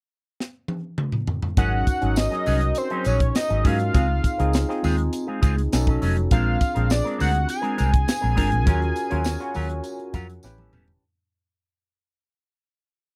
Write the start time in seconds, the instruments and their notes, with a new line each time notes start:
0.40 snare
0.68 high tom
0.98 mid tom
1.12 mid tom
1.27 floor tom
1.42 floor tom
1.57 fingered electric bass G#1, clean electric guitar F#3 C#4 D#4 G#4, tine electric piano C#4 D#4 F#4 A#4, analog synth lead F#5, kick, closed hi-hat, tambourine
1.87 kick, closed hi-hat, tambourine
2.01 fingered electric bass G#1, clean electric guitar F#3 C#4 D#4 G#4, tine electric piano C#4 D#4 F#4 A#4, closed hi-hat
2.16 analog synth lead D#5, muted clean electric guitar stroke, snare, closed hi-hat, tambourine
2.31 clean electric guitar F#3 C#4 D#4 G#4, snare, closed hi-hat
2.46 fingered electric bass C2, clean electric guitar F#3 C#4 D#4 G#4, open hi-hat, tambourine
2.61 muted clean electric guitar stroke, closed hi-hat
2.75 analog synth lead C5, muted clean electric guitar stroke, closed hi-hat, tambourine
2.90 clean electric guitar F#3 C#4 D#4 G#4, closed hi-hat
3.04 fingered electric bass A#1, clean electric guitar F#3 C#4 D#4 G#4, analog synth lead C#5, closed hi-hat, tambourine
3.20 muted clean electric guitar stroke, kick, closed hi-hat
3.35 analog synth lead D#5, muted clean electric guitar stroke, snare, closed hi-hat, tambourine
3.49 fingered electric bass G#1, clean electric guitar F#3 C#4 D#4 G#4, closed hi-hat
3.64 fingered electric bass G#2, clean electric guitar F#3 C#4 D#4 G#4, tine electric piano C#4 D#4 F#4 A#4, analog synth lead F5, kick, snare, open hi-hat
3.79 muted clean electric guitar stroke, closed hi-hat
3.93 fingered electric bass C#2, clean electric guitar G#3 C4 F4 G#4, tine electric piano C4 D#4 F4 G#4, kick, closed hi-hat, tambourine
4.08 muted clean electric guitar stroke
4.23 muted clean electric guitar stroke, kick, closed hi-hat, tambourine
4.38 fingered electric bass C#2, clean electric guitar G#3 C4 F4 A#4, tine electric piano C4 D#4 F4 G#4, closed hi-hat
4.53 snare, closed hi-hat, tambourine
4.67 tine electric piano C4 D#4 F4 G#4, muted clean electric guitar stroke, snare
4.83 fingered electric bass D#2, clean electric guitar G#3 C4 F4 G#4, open hi-hat, tambourine
4.97 muted clean electric guitar stroke, closed hi-hat
5.12 muted clean electric guitar stroke, closed hi-hat, tambourine
5.27 clean electric guitar G#3 C4 F4 G#4
5.42 fingered electric bass C#2, clean electric guitar G#3 C4 F4 G#4, kick, closed hi-hat, tambourine
5.56 muted clean electric guitar stroke, closed hi-hat
5.73 fingered electric bass B1, tine electric piano C#4 D#4 F#4 A4, muted clean electric guitar stroke, snare, closed hi-hat, tambourine
5.87 clean electric guitar F#3 C#4 D#4 A4, kick
6.02 fingered electric bass F1, clean electric guitar F#3 C#4 D#4 A4, open hi-hat, tambourine
6.17 muted clean electric guitar stroke, closed hi-hat
6.31 fingered electric bass A#1, clean electric guitar G#3 C4 D4 A#4, tine electric piano C4 D4 F4 G#4, analog synth lead F5, kick, closed hi-hat, tambourine
6.60 muted clean electric guitar stroke, kick, closed hi-hat, tambourine
6.74 fingered electric bass A#1, clean electric guitar G#3 C4 D4 A#4, tine electric piano C4 D4 F4 G#4, closed hi-hat
6.89 analog synth lead D5, muted clean electric guitar stroke, snare, closed hi-hat, tambourine
7.04 clean electric guitar G#3 C4 D4 A#4, snare
7.18 fingered electric bass D2, clean electric guitar G#3 C4 D4 A#4, analog synth lead F#5, open hi-hat, tambourine
7.33 muted clean electric guitar stroke, closed hi-hat
7.48 analog synth lead G#5, muted clean electric guitar stroke, closed hi-hat, tambourine
7.61 clean electric guitar G#3 C4 D4 A#4, closed hi-hat
7.77 fingered electric bass C2, clean electric guitar G#3 C4 D4 A#4, closed hi-hat, tambourine
7.93 muted clean electric guitar stroke, kick, closed hi-hat
8.07 muted clean electric guitar stroke, snare, closed hi-hat, tambourine
8.21 fingered electric bass A#1, clean electric guitar G#3 C4 D4 A#4
8.35 fingered electric bass G#1, clean electric guitar G#3 C4 D4 A#4, tine electric piano C4 D4 F4 A#4, kick, snare, open hi-hat
8.51 fingered electric bass A#1, muted clean electric guitar stroke, closed hi-hat
8.66 fingered electric bass D#2, clean electric guitar F#3 C#4 F4 A#4, tine electric piano C#4 F4 F#4 A#4, kick, closed hi-hat, tambourine
8.80 muted clean electric guitar stroke, closed hi-hat
8.94 muted clean electric guitar stroke, closed hi-hat, tambourine
9.10 fingered electric bass D#2, clean electric guitar F#3 C#4 F4 C5, tine electric piano C#4 F4 F#4 A#4, closed hi-hat
9.24 snare, closed hi-hat, tambourine
9.40 tine electric piano C#4 F4 F#4 C#5, muted clean electric guitar stroke, snare, closed hi-hat
9.54 fingered electric bass D#2, clean electric guitar F#3 C#4 F4 A#4, open hi-hat, tambourine
9.69 muted clean electric guitar stroke, closed hi-hat
9.83 muted clean electric guitar stroke, closed hi-hat, tambourine
9.97 muted clean electric guitar stroke, closed hi-hat
10.13 fingered electric bass F2, clean electric guitar F#3 C#4 F4 A#4, tine electric piano F#5, kick, closed hi-hat, tambourine
10.28 muted clean electric guitar stroke, closed hi-hat
10.43 fingered electric bass A1, tine electric piano C#4 E4 G4 B4 G5, muted clean electric guitar stroke, snare, tambourine
10.58 clean electric guitar G3 B3 C#4 A4, high tom
10.72 fingered electric bass E1, clean electric guitar G3 B3 C#4 A4, tine electric piano A5, mid tom, tambourine
10.87 muted clean electric guitar stroke, floor tom